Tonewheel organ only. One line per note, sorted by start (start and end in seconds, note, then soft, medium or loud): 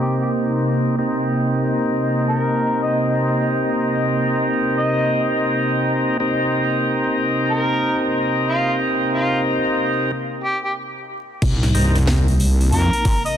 0.00 0.96 C4 medium
0.00 0.96 D#4 medium
0.00 0.96 G4 medium
0.00 0.96 A#4 medium
0.98 6.17 C4 medium
0.98 6.17 D#4 medium
0.98 6.17 G4 medium
0.98 6.17 A#4 medium
6.20 10.11 C4 medium
6.20 10.11 D#4 medium
6.20 10.11 G4 medium
6.20 10.11 A#4 medium
11.74 11.97 C4 medium
11.74 11.97 D#4 medium
11.74 11.97 G4 medium
11.74 11.97 A#4 medium